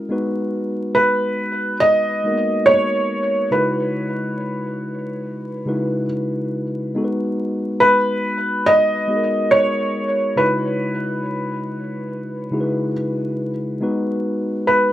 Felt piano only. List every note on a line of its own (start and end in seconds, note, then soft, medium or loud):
0.95 1.77 B4 medium
1.80 2.69 D#5 loud
2.66 3.48 C#5 medium
3.52 6.05 B4 medium
7.80 8.69 B4 medium
8.66 9.55 D#5 loud
9.51 10.40 C#5 medium
10.37 12.91 B4 medium
14.67 14.93 B4 medium